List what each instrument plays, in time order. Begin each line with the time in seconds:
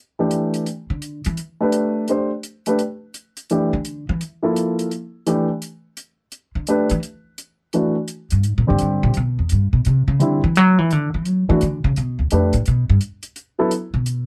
0.19 grand piano E3 A3 D4 G4
0.31 closed hi-hat
0.54 closed hi-hat
0.66 closed hi-hat
0.90 upright bass D3
1.02 closed hi-hat
1.25 upright bass E3, closed hi-hat
1.37 closed hi-hat
1.61 grand piano A3 D4 G4 B4
1.72 closed hi-hat
2.08 grand piano A3 D4 G4 C5, closed hi-hat
2.43 closed hi-hat
2.66 grand piano A3 D4 G4 B4, closed hi-hat
2.79 closed hi-hat
3.14 closed hi-hat
3.37 closed hi-hat
3.50 grand piano E3 A3 D4 G4, closed hi-hat
3.73 upright bass D3
3.85 closed hi-hat
4.09 upright bass E3
4.21 closed hi-hat
4.43 grand piano F3 A#3 E4 A4
4.56 closed hi-hat
4.79 closed hi-hat
4.91 closed hi-hat
5.26 grand piano E3 A3 D4 G4, closed hi-hat
5.62 closed hi-hat
5.97 closed hi-hat
6.32 closed hi-hat
6.55 upright bass D3
6.67 grand piano A3 D4 G4 B4, closed hi-hat
6.90 upright bass E3, closed hi-hat
7.03 closed hi-hat
7.38 closed hi-hat
7.73 grand piano E3 A3 D4 F#4, closed hi-hat
8.08 closed hi-hat
8.30 upright bass G2, closed hi-hat
8.43 upright bass G#2, closed hi-hat
8.58 upright bass A#2
8.67 upright bass G#2, grand piano D3 G3 C4 G4
8.79 upright bass G2, closed hi-hat
9.03 upright bass A#2
9.14 upright bass B2, closed hi-hat
9.39 upright bass E2
9.49 upright bass G2, closed hi-hat
9.73 upright bass B2
9.85 upright bass C3, closed hi-hat
10.08 upright bass C#3
10.19 grand piano D3 G3 C4 E4, upright bass D3, closed hi-hat
10.44 upright bass E3
10.56 upright bass F#3, closed hi-hat
10.79 upright bass E3
10.91 upright bass D3, closed hi-hat
11.14 upright bass E3
11.25 upright bass F#3, closed hi-hat
11.49 grand piano E3 A3 D4 F#4, upright bass E3
11.61 upright bass D3, closed hi-hat
11.84 upright bass C#3
11.96 upright bass B2, closed hi-hat
12.19 upright bass D2
12.31 upright bass F2, grand piano A3 D4 G4 B4, closed hi-hat
12.53 upright bass A2, closed hi-hat
12.66 upright bass B2, closed hi-hat
12.90 upright bass G2
13.01 closed hi-hat
13.23 closed hi-hat
13.36 closed hi-hat
13.59 grand piano F#3 B3 E4 A4
13.71 closed hi-hat
13.94 upright bass B2
14.06 closed hi-hat